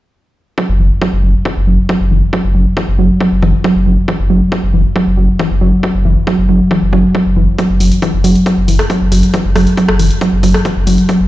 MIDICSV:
0, 0, Header, 1, 4, 480
1, 0, Start_track
1, 0, Tempo, 437956
1, 632, Time_signature, 4, 2, 24, 8
1, 12362, End_track
2, 0, Start_track
2, 0, Title_t, "Synth arpeggio sound"
2, 0, Program_c, 0, 84
2, 633, Note_on_c, 0, 54, 81
2, 744, Note_off_c, 0, 54, 0
2, 873, Note_on_c, 0, 52, 74
2, 947, Note_off_c, 0, 52, 0
2, 1113, Note_on_c, 0, 54, 100
2, 1224, Note_off_c, 0, 54, 0
2, 1353, Note_on_c, 0, 54, 72
2, 1464, Note_off_c, 0, 54, 0
2, 1592, Note_on_c, 0, 52, 81
2, 1667, Note_off_c, 0, 52, 0
2, 1832, Note_on_c, 0, 54, 96
2, 1944, Note_off_c, 0, 54, 0
2, 2073, Note_on_c, 0, 54, 77
2, 2184, Note_off_c, 0, 54, 0
2, 2313, Note_on_c, 0, 52, 76
2, 2387, Note_off_c, 0, 52, 0
2, 2553, Note_on_c, 0, 54, 100
2, 2664, Note_off_c, 0, 54, 0
2, 2792, Note_on_c, 0, 54, 73
2, 2904, Note_off_c, 0, 54, 0
2, 3033, Note_on_c, 0, 52, 83
2, 3107, Note_off_c, 0, 52, 0
2, 3273, Note_on_c, 0, 54, 97
2, 3384, Note_off_c, 0, 54, 0
2, 3512, Note_on_c, 0, 54, 82
2, 3624, Note_off_c, 0, 54, 0
2, 3753, Note_on_c, 0, 52, 73
2, 3827, Note_off_c, 0, 52, 0
2, 3992, Note_on_c, 0, 54, 98
2, 4104, Note_off_c, 0, 54, 0
2, 4233, Note_on_c, 0, 54, 77
2, 4344, Note_off_c, 0, 54, 0
2, 4473, Note_on_c, 0, 52, 81
2, 4547, Note_off_c, 0, 52, 0
2, 4712, Note_on_c, 0, 54, 100
2, 4824, Note_off_c, 0, 54, 0
2, 4952, Note_on_c, 0, 54, 82
2, 5064, Note_off_c, 0, 54, 0
2, 5192, Note_on_c, 0, 52, 72
2, 5267, Note_off_c, 0, 52, 0
2, 5432, Note_on_c, 0, 54, 101
2, 5544, Note_off_c, 0, 54, 0
2, 5672, Note_on_c, 0, 54, 74
2, 5784, Note_off_c, 0, 54, 0
2, 5912, Note_on_c, 0, 52, 80
2, 5986, Note_off_c, 0, 52, 0
2, 6152, Note_on_c, 0, 54, 100
2, 6264, Note_off_c, 0, 54, 0
2, 6392, Note_on_c, 0, 54, 84
2, 6504, Note_off_c, 0, 54, 0
2, 6632, Note_on_c, 0, 52, 75
2, 6707, Note_off_c, 0, 52, 0
2, 6872, Note_on_c, 0, 54, 101
2, 6984, Note_off_c, 0, 54, 0
2, 7113, Note_on_c, 0, 54, 74
2, 7224, Note_off_c, 0, 54, 0
2, 7353, Note_on_c, 0, 52, 84
2, 7427, Note_off_c, 0, 52, 0
2, 7593, Note_on_c, 0, 54, 96
2, 7704, Note_off_c, 0, 54, 0
2, 7833, Note_on_c, 0, 54, 80
2, 7944, Note_off_c, 0, 54, 0
2, 8072, Note_on_c, 0, 52, 78
2, 8147, Note_off_c, 0, 52, 0
2, 8313, Note_on_c, 0, 54, 102
2, 8424, Note_off_c, 0, 54, 0
2, 8553, Note_on_c, 0, 54, 77
2, 8664, Note_off_c, 0, 54, 0
2, 8793, Note_on_c, 0, 52, 81
2, 8867, Note_off_c, 0, 52, 0
2, 9032, Note_on_c, 0, 54, 96
2, 9144, Note_off_c, 0, 54, 0
2, 9272, Note_on_c, 0, 54, 82
2, 9384, Note_off_c, 0, 54, 0
2, 9513, Note_on_c, 0, 52, 74
2, 9587, Note_off_c, 0, 52, 0
2, 9752, Note_on_c, 0, 54, 99
2, 9864, Note_off_c, 0, 54, 0
2, 9993, Note_on_c, 0, 54, 78
2, 10104, Note_off_c, 0, 54, 0
2, 10233, Note_on_c, 0, 52, 83
2, 10307, Note_off_c, 0, 52, 0
2, 10473, Note_on_c, 0, 54, 98
2, 10584, Note_off_c, 0, 54, 0
2, 10713, Note_on_c, 0, 54, 83
2, 10824, Note_off_c, 0, 54, 0
2, 10954, Note_on_c, 0, 52, 73
2, 11028, Note_off_c, 0, 52, 0
2, 11193, Note_on_c, 0, 54, 101
2, 11304, Note_off_c, 0, 54, 0
2, 11434, Note_on_c, 0, 54, 77
2, 11544, Note_off_c, 0, 54, 0
2, 11673, Note_on_c, 0, 52, 81
2, 11747, Note_off_c, 0, 52, 0
2, 11913, Note_on_c, 0, 54, 101
2, 12024, Note_off_c, 0, 54, 0
2, 12153, Note_on_c, 0, 54, 84
2, 12264, Note_off_c, 0, 54, 0
2, 12362, End_track
3, 0, Start_track
3, 0, Title_t, "Sub bass"
3, 0, Program_c, 1, 38
3, 754, Note_on_c, 1, 30, 76
3, 866, Note_off_c, 1, 30, 0
3, 872, Note_on_c, 1, 30, 94
3, 991, Note_off_c, 1, 30, 0
3, 1233, Note_on_c, 1, 30, 72
3, 1345, Note_off_c, 1, 30, 0
3, 1352, Note_on_c, 1, 30, 98
3, 1471, Note_off_c, 1, 30, 0
3, 1714, Note_on_c, 1, 30, 76
3, 1826, Note_off_c, 1, 30, 0
3, 1833, Note_on_c, 1, 30, 96
3, 1951, Note_off_c, 1, 30, 0
3, 2193, Note_on_c, 1, 30, 76
3, 2306, Note_off_c, 1, 30, 0
3, 2312, Note_on_c, 1, 30, 97
3, 2431, Note_off_c, 1, 30, 0
3, 2674, Note_on_c, 1, 30, 73
3, 2786, Note_off_c, 1, 30, 0
3, 2793, Note_on_c, 1, 30, 91
3, 2912, Note_off_c, 1, 30, 0
3, 3154, Note_on_c, 1, 30, 75
3, 3266, Note_off_c, 1, 30, 0
3, 3272, Note_on_c, 1, 30, 98
3, 3391, Note_off_c, 1, 30, 0
3, 3633, Note_on_c, 1, 30, 78
3, 3746, Note_off_c, 1, 30, 0
3, 3753, Note_on_c, 1, 30, 95
3, 3872, Note_off_c, 1, 30, 0
3, 4113, Note_on_c, 1, 30, 75
3, 4225, Note_off_c, 1, 30, 0
3, 4232, Note_on_c, 1, 30, 94
3, 4351, Note_off_c, 1, 30, 0
3, 4593, Note_on_c, 1, 30, 76
3, 4705, Note_off_c, 1, 30, 0
3, 4712, Note_on_c, 1, 30, 94
3, 4831, Note_off_c, 1, 30, 0
3, 5073, Note_on_c, 1, 30, 72
3, 5185, Note_off_c, 1, 30, 0
3, 5191, Note_on_c, 1, 30, 94
3, 5311, Note_off_c, 1, 30, 0
3, 5554, Note_on_c, 1, 30, 77
3, 5665, Note_off_c, 1, 30, 0
3, 5672, Note_on_c, 1, 30, 98
3, 5791, Note_off_c, 1, 30, 0
3, 6033, Note_on_c, 1, 30, 76
3, 6145, Note_off_c, 1, 30, 0
3, 6152, Note_on_c, 1, 30, 95
3, 6271, Note_off_c, 1, 30, 0
3, 6513, Note_on_c, 1, 30, 77
3, 6626, Note_off_c, 1, 30, 0
3, 6632, Note_on_c, 1, 30, 96
3, 6751, Note_off_c, 1, 30, 0
3, 6993, Note_on_c, 1, 30, 72
3, 7105, Note_off_c, 1, 30, 0
3, 7112, Note_on_c, 1, 30, 100
3, 7231, Note_off_c, 1, 30, 0
3, 7474, Note_on_c, 1, 30, 77
3, 7586, Note_off_c, 1, 30, 0
3, 7593, Note_on_c, 1, 30, 100
3, 7712, Note_off_c, 1, 30, 0
3, 7954, Note_on_c, 1, 30, 75
3, 8066, Note_off_c, 1, 30, 0
3, 8073, Note_on_c, 1, 30, 94
3, 8192, Note_off_c, 1, 30, 0
3, 8434, Note_on_c, 1, 30, 78
3, 8546, Note_off_c, 1, 30, 0
3, 8552, Note_on_c, 1, 30, 94
3, 8671, Note_off_c, 1, 30, 0
3, 8914, Note_on_c, 1, 30, 75
3, 9027, Note_off_c, 1, 30, 0
3, 9033, Note_on_c, 1, 30, 94
3, 9152, Note_off_c, 1, 30, 0
3, 9394, Note_on_c, 1, 30, 79
3, 9507, Note_off_c, 1, 30, 0
3, 9513, Note_on_c, 1, 30, 98
3, 9632, Note_off_c, 1, 30, 0
3, 9875, Note_on_c, 1, 30, 75
3, 9987, Note_off_c, 1, 30, 0
3, 9993, Note_on_c, 1, 30, 97
3, 10112, Note_off_c, 1, 30, 0
3, 10354, Note_on_c, 1, 30, 76
3, 10466, Note_off_c, 1, 30, 0
3, 10473, Note_on_c, 1, 30, 97
3, 10592, Note_off_c, 1, 30, 0
3, 10834, Note_on_c, 1, 30, 72
3, 10946, Note_off_c, 1, 30, 0
3, 10952, Note_on_c, 1, 30, 96
3, 11071, Note_off_c, 1, 30, 0
3, 11314, Note_on_c, 1, 30, 79
3, 11426, Note_off_c, 1, 30, 0
3, 11433, Note_on_c, 1, 30, 100
3, 11552, Note_off_c, 1, 30, 0
3, 11794, Note_on_c, 1, 30, 73
3, 11906, Note_off_c, 1, 30, 0
3, 11913, Note_on_c, 1, 30, 99
3, 12031, Note_off_c, 1, 30, 0
3, 12274, Note_on_c, 1, 30, 78
3, 12362, Note_off_c, 1, 30, 0
3, 12362, End_track
4, 0, Start_track
4, 0, Title_t, "Drums"
4, 633, Note_on_c, 9, 36, 115
4, 742, Note_off_c, 9, 36, 0
4, 1113, Note_on_c, 9, 36, 113
4, 1223, Note_off_c, 9, 36, 0
4, 1593, Note_on_c, 9, 36, 114
4, 1703, Note_off_c, 9, 36, 0
4, 2073, Note_on_c, 9, 36, 110
4, 2183, Note_off_c, 9, 36, 0
4, 2553, Note_on_c, 9, 36, 116
4, 2663, Note_off_c, 9, 36, 0
4, 3033, Note_on_c, 9, 36, 122
4, 3143, Note_off_c, 9, 36, 0
4, 3513, Note_on_c, 9, 36, 117
4, 3623, Note_off_c, 9, 36, 0
4, 3753, Note_on_c, 9, 36, 61
4, 3863, Note_off_c, 9, 36, 0
4, 3993, Note_on_c, 9, 36, 118
4, 4103, Note_off_c, 9, 36, 0
4, 4473, Note_on_c, 9, 36, 119
4, 4582, Note_off_c, 9, 36, 0
4, 4953, Note_on_c, 9, 36, 120
4, 5062, Note_off_c, 9, 36, 0
4, 5432, Note_on_c, 9, 36, 121
4, 5542, Note_off_c, 9, 36, 0
4, 5912, Note_on_c, 9, 36, 117
4, 6022, Note_off_c, 9, 36, 0
4, 6392, Note_on_c, 9, 36, 118
4, 6502, Note_off_c, 9, 36, 0
4, 6873, Note_on_c, 9, 36, 118
4, 6982, Note_off_c, 9, 36, 0
4, 7353, Note_on_c, 9, 36, 119
4, 7462, Note_off_c, 9, 36, 0
4, 7593, Note_on_c, 9, 36, 62
4, 7703, Note_off_c, 9, 36, 0
4, 7833, Note_on_c, 9, 36, 118
4, 7943, Note_off_c, 9, 36, 0
4, 8313, Note_on_c, 9, 36, 113
4, 8313, Note_on_c, 9, 42, 61
4, 8423, Note_off_c, 9, 36, 0
4, 8423, Note_off_c, 9, 42, 0
4, 8553, Note_on_c, 9, 46, 108
4, 8662, Note_off_c, 9, 46, 0
4, 8674, Note_on_c, 9, 42, 61
4, 8784, Note_off_c, 9, 42, 0
4, 8793, Note_on_c, 9, 36, 115
4, 8793, Note_on_c, 9, 42, 60
4, 8903, Note_off_c, 9, 36, 0
4, 8903, Note_off_c, 9, 42, 0
4, 9033, Note_on_c, 9, 46, 104
4, 9143, Note_off_c, 9, 46, 0
4, 9155, Note_on_c, 9, 42, 62
4, 9265, Note_off_c, 9, 42, 0
4, 9273, Note_on_c, 9, 36, 113
4, 9274, Note_on_c, 9, 42, 61
4, 9383, Note_off_c, 9, 36, 0
4, 9383, Note_off_c, 9, 42, 0
4, 9514, Note_on_c, 9, 46, 104
4, 9624, Note_off_c, 9, 46, 0
4, 9635, Note_on_c, 9, 37, 94
4, 9635, Note_on_c, 9, 42, 62
4, 9744, Note_off_c, 9, 37, 0
4, 9744, Note_off_c, 9, 42, 0
4, 9753, Note_on_c, 9, 36, 116
4, 9754, Note_on_c, 9, 42, 64
4, 9863, Note_off_c, 9, 36, 0
4, 9863, Note_off_c, 9, 42, 0
4, 9994, Note_on_c, 9, 46, 105
4, 10103, Note_off_c, 9, 46, 0
4, 10115, Note_on_c, 9, 42, 60
4, 10224, Note_off_c, 9, 42, 0
4, 10233, Note_on_c, 9, 36, 111
4, 10234, Note_on_c, 9, 42, 61
4, 10343, Note_off_c, 9, 36, 0
4, 10343, Note_off_c, 9, 42, 0
4, 10473, Note_on_c, 9, 37, 86
4, 10473, Note_on_c, 9, 46, 102
4, 10583, Note_off_c, 9, 37, 0
4, 10583, Note_off_c, 9, 46, 0
4, 10594, Note_on_c, 9, 42, 61
4, 10704, Note_off_c, 9, 42, 0
4, 10713, Note_on_c, 9, 36, 107
4, 10713, Note_on_c, 9, 42, 62
4, 10822, Note_off_c, 9, 42, 0
4, 10823, Note_off_c, 9, 36, 0
4, 10834, Note_on_c, 9, 37, 83
4, 10943, Note_off_c, 9, 37, 0
4, 10954, Note_on_c, 9, 46, 100
4, 11063, Note_off_c, 9, 46, 0
4, 11075, Note_on_c, 9, 42, 61
4, 11185, Note_off_c, 9, 42, 0
4, 11193, Note_on_c, 9, 36, 111
4, 11193, Note_on_c, 9, 42, 61
4, 11303, Note_off_c, 9, 36, 0
4, 11303, Note_off_c, 9, 42, 0
4, 11433, Note_on_c, 9, 36, 59
4, 11433, Note_on_c, 9, 46, 100
4, 11542, Note_off_c, 9, 46, 0
4, 11543, Note_off_c, 9, 36, 0
4, 11555, Note_on_c, 9, 37, 92
4, 11555, Note_on_c, 9, 42, 60
4, 11664, Note_off_c, 9, 37, 0
4, 11664, Note_off_c, 9, 42, 0
4, 11673, Note_on_c, 9, 36, 111
4, 11674, Note_on_c, 9, 42, 62
4, 11783, Note_off_c, 9, 36, 0
4, 11783, Note_off_c, 9, 42, 0
4, 11913, Note_on_c, 9, 46, 103
4, 12022, Note_off_c, 9, 46, 0
4, 12034, Note_on_c, 9, 42, 61
4, 12144, Note_off_c, 9, 42, 0
4, 12153, Note_on_c, 9, 36, 113
4, 12153, Note_on_c, 9, 42, 61
4, 12263, Note_off_c, 9, 36, 0
4, 12263, Note_off_c, 9, 42, 0
4, 12362, End_track
0, 0, End_of_file